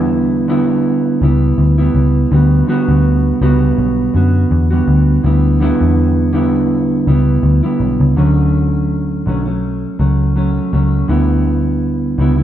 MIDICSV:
0, 0, Header, 1, 3, 480
1, 0, Start_track
1, 0, Key_signature, 2, "major"
1, 0, Tempo, 730816
1, 1522, Time_signature, 4, 2, 24, 8
1, 8166, End_track
2, 0, Start_track
2, 0, Title_t, "Clean electric guitar"
2, 0, Program_c, 0, 27
2, 0, Note_on_c, 0, 50, 84
2, 0, Note_on_c, 0, 55, 97
2, 0, Note_on_c, 0, 59, 89
2, 0, Note_on_c, 0, 64, 95
2, 312, Note_off_c, 0, 50, 0
2, 315, Note_on_c, 0, 50, 96
2, 321, Note_off_c, 0, 55, 0
2, 323, Note_off_c, 0, 59, 0
2, 323, Note_on_c, 0, 55, 88
2, 326, Note_on_c, 0, 59, 98
2, 328, Note_off_c, 0, 64, 0
2, 331, Note_on_c, 0, 64, 104
2, 797, Note_off_c, 0, 55, 0
2, 800, Note_on_c, 0, 55, 64
2, 806, Note_off_c, 0, 59, 0
2, 809, Note_on_c, 0, 59, 61
2, 813, Note_off_c, 0, 64, 0
2, 815, Note_on_c, 0, 64, 71
2, 835, Note_off_c, 0, 50, 0
2, 1161, Note_off_c, 0, 64, 0
2, 1168, Note_off_c, 0, 59, 0
2, 1169, Note_on_c, 0, 64, 75
2, 1173, Note_off_c, 0, 55, 0
2, 1176, Note_on_c, 0, 59, 73
2, 1181, Note_on_c, 0, 55, 58
2, 1516, Note_off_c, 0, 55, 0
2, 1516, Note_on_c, 0, 50, 62
2, 1520, Note_off_c, 0, 64, 0
2, 1523, Note_off_c, 0, 59, 0
2, 1524, Note_on_c, 0, 55, 74
2, 1531, Note_on_c, 0, 59, 71
2, 1539, Note_on_c, 0, 66, 71
2, 1747, Note_off_c, 0, 50, 0
2, 1754, Note_off_c, 0, 55, 0
2, 1755, Note_on_c, 0, 50, 77
2, 1759, Note_off_c, 0, 59, 0
2, 1762, Note_on_c, 0, 55, 87
2, 1763, Note_off_c, 0, 66, 0
2, 1766, Note_on_c, 0, 59, 89
2, 1771, Note_on_c, 0, 66, 106
2, 2241, Note_off_c, 0, 55, 0
2, 2244, Note_on_c, 0, 55, 87
2, 2246, Note_off_c, 0, 66, 0
2, 2247, Note_off_c, 0, 59, 0
2, 2249, Note_on_c, 0, 59, 96
2, 2255, Note_on_c, 0, 66, 101
2, 2714, Note_off_c, 0, 50, 0
2, 2716, Note_on_c, 0, 50, 68
2, 2729, Note_off_c, 0, 59, 0
2, 2729, Note_off_c, 0, 66, 0
2, 2732, Note_on_c, 0, 59, 61
2, 2735, Note_on_c, 0, 66, 66
2, 2755, Note_off_c, 0, 55, 0
2, 3082, Note_off_c, 0, 66, 0
2, 3089, Note_off_c, 0, 59, 0
2, 3090, Note_on_c, 0, 66, 76
2, 3091, Note_off_c, 0, 50, 0
2, 3097, Note_on_c, 0, 59, 70
2, 3101, Note_on_c, 0, 55, 68
2, 3107, Note_on_c, 0, 50, 59
2, 3429, Note_off_c, 0, 50, 0
2, 3436, Note_off_c, 0, 55, 0
2, 3437, Note_on_c, 0, 50, 60
2, 3440, Note_off_c, 0, 66, 0
2, 3444, Note_off_c, 0, 59, 0
2, 3444, Note_on_c, 0, 55, 67
2, 3451, Note_on_c, 0, 59, 66
2, 3456, Note_on_c, 0, 64, 68
2, 3670, Note_off_c, 0, 50, 0
2, 3677, Note_off_c, 0, 55, 0
2, 3678, Note_on_c, 0, 50, 88
2, 3682, Note_off_c, 0, 59, 0
2, 3685, Note_on_c, 0, 55, 92
2, 3687, Note_off_c, 0, 64, 0
2, 3690, Note_on_c, 0, 59, 95
2, 3695, Note_on_c, 0, 64, 100
2, 4153, Note_off_c, 0, 55, 0
2, 4154, Note_off_c, 0, 50, 0
2, 4156, Note_on_c, 0, 50, 95
2, 4159, Note_off_c, 0, 59, 0
2, 4161, Note_on_c, 0, 55, 96
2, 4164, Note_off_c, 0, 64, 0
2, 4167, Note_on_c, 0, 59, 87
2, 4172, Note_on_c, 0, 64, 94
2, 4640, Note_off_c, 0, 55, 0
2, 4645, Note_off_c, 0, 59, 0
2, 4648, Note_off_c, 0, 64, 0
2, 4648, Note_on_c, 0, 55, 65
2, 4652, Note_on_c, 0, 59, 73
2, 4660, Note_on_c, 0, 64, 63
2, 4680, Note_off_c, 0, 50, 0
2, 5004, Note_off_c, 0, 64, 0
2, 5011, Note_off_c, 0, 59, 0
2, 5012, Note_on_c, 0, 64, 62
2, 5016, Note_off_c, 0, 55, 0
2, 5019, Note_on_c, 0, 59, 69
2, 5024, Note_on_c, 0, 55, 66
2, 5027, Note_on_c, 0, 50, 57
2, 5353, Note_off_c, 0, 50, 0
2, 5361, Note_off_c, 0, 64, 0
2, 5361, Note_on_c, 0, 50, 83
2, 5365, Note_off_c, 0, 55, 0
2, 5365, Note_off_c, 0, 59, 0
2, 5367, Note_on_c, 0, 54, 85
2, 5372, Note_on_c, 0, 57, 85
2, 5376, Note_on_c, 0, 61, 90
2, 6078, Note_off_c, 0, 50, 0
2, 6080, Note_on_c, 0, 50, 65
2, 6083, Note_off_c, 0, 54, 0
2, 6088, Note_off_c, 0, 57, 0
2, 6090, Note_off_c, 0, 61, 0
2, 6091, Note_on_c, 0, 54, 67
2, 6098, Note_on_c, 0, 57, 68
2, 6104, Note_on_c, 0, 61, 72
2, 6202, Note_off_c, 0, 61, 0
2, 6209, Note_on_c, 0, 61, 50
2, 6213, Note_off_c, 0, 57, 0
2, 6214, Note_off_c, 0, 50, 0
2, 6219, Note_off_c, 0, 54, 0
2, 6221, Note_on_c, 0, 57, 47
2, 6232, Note_on_c, 0, 54, 40
2, 6555, Note_off_c, 0, 54, 0
2, 6561, Note_off_c, 0, 57, 0
2, 6561, Note_off_c, 0, 61, 0
2, 6562, Note_on_c, 0, 54, 63
2, 6569, Note_on_c, 0, 57, 66
2, 6576, Note_on_c, 0, 61, 57
2, 6794, Note_off_c, 0, 54, 0
2, 6801, Note_off_c, 0, 57, 0
2, 6802, Note_on_c, 0, 54, 70
2, 6808, Note_off_c, 0, 61, 0
2, 6809, Note_on_c, 0, 57, 66
2, 6816, Note_on_c, 0, 61, 69
2, 7038, Note_off_c, 0, 54, 0
2, 7044, Note_off_c, 0, 57, 0
2, 7046, Note_on_c, 0, 54, 70
2, 7050, Note_off_c, 0, 61, 0
2, 7052, Note_on_c, 0, 57, 68
2, 7059, Note_on_c, 0, 61, 72
2, 7278, Note_on_c, 0, 50, 84
2, 7279, Note_off_c, 0, 54, 0
2, 7282, Note_on_c, 0, 55, 70
2, 7284, Note_off_c, 0, 57, 0
2, 7286, Note_on_c, 0, 59, 83
2, 7289, Note_off_c, 0, 61, 0
2, 7291, Note_on_c, 0, 64, 86
2, 7997, Note_off_c, 0, 50, 0
2, 8000, Note_on_c, 0, 50, 63
2, 8006, Note_off_c, 0, 55, 0
2, 8008, Note_on_c, 0, 55, 72
2, 8011, Note_off_c, 0, 59, 0
2, 8014, Note_on_c, 0, 59, 77
2, 8019, Note_off_c, 0, 64, 0
2, 8021, Note_on_c, 0, 64, 77
2, 8123, Note_off_c, 0, 64, 0
2, 8131, Note_on_c, 0, 64, 60
2, 8135, Note_off_c, 0, 50, 0
2, 8137, Note_off_c, 0, 59, 0
2, 8139, Note_off_c, 0, 55, 0
2, 8144, Note_on_c, 0, 59, 50
2, 8166, Note_off_c, 0, 59, 0
2, 8166, Note_off_c, 0, 64, 0
2, 8166, End_track
3, 0, Start_track
3, 0, Title_t, "Picked electric bass"
3, 0, Program_c, 1, 34
3, 0, Note_on_c, 1, 40, 89
3, 773, Note_off_c, 1, 40, 0
3, 799, Note_on_c, 1, 37, 94
3, 992, Note_off_c, 1, 37, 0
3, 1038, Note_on_c, 1, 38, 89
3, 1232, Note_off_c, 1, 38, 0
3, 1277, Note_on_c, 1, 37, 81
3, 1471, Note_off_c, 1, 37, 0
3, 1522, Note_on_c, 1, 38, 100
3, 1714, Note_off_c, 1, 38, 0
3, 1895, Note_on_c, 1, 38, 100
3, 2173, Note_off_c, 1, 38, 0
3, 2243, Note_on_c, 1, 37, 97
3, 2434, Note_off_c, 1, 37, 0
3, 2484, Note_on_c, 1, 35, 88
3, 2675, Note_off_c, 1, 35, 0
3, 2723, Note_on_c, 1, 42, 95
3, 2915, Note_off_c, 1, 42, 0
3, 2962, Note_on_c, 1, 40, 95
3, 3154, Note_off_c, 1, 40, 0
3, 3203, Note_on_c, 1, 38, 82
3, 3395, Note_off_c, 1, 38, 0
3, 3445, Note_on_c, 1, 38, 102
3, 3742, Note_off_c, 1, 38, 0
3, 3817, Note_on_c, 1, 40, 85
3, 4618, Note_off_c, 1, 40, 0
3, 4645, Note_on_c, 1, 37, 95
3, 4836, Note_off_c, 1, 37, 0
3, 4881, Note_on_c, 1, 38, 99
3, 4987, Note_off_c, 1, 38, 0
3, 5124, Note_on_c, 1, 35, 82
3, 5229, Note_off_c, 1, 35, 0
3, 5255, Note_on_c, 1, 37, 93
3, 5342, Note_off_c, 1, 37, 0
3, 5367, Note_on_c, 1, 38, 104
3, 6059, Note_off_c, 1, 38, 0
3, 6089, Note_on_c, 1, 35, 86
3, 6471, Note_off_c, 1, 35, 0
3, 6565, Note_on_c, 1, 37, 82
3, 6949, Note_off_c, 1, 37, 0
3, 7048, Note_on_c, 1, 37, 75
3, 7239, Note_off_c, 1, 37, 0
3, 7286, Note_on_c, 1, 38, 97
3, 7979, Note_off_c, 1, 38, 0
3, 8003, Note_on_c, 1, 37, 89
3, 8166, Note_off_c, 1, 37, 0
3, 8166, End_track
0, 0, End_of_file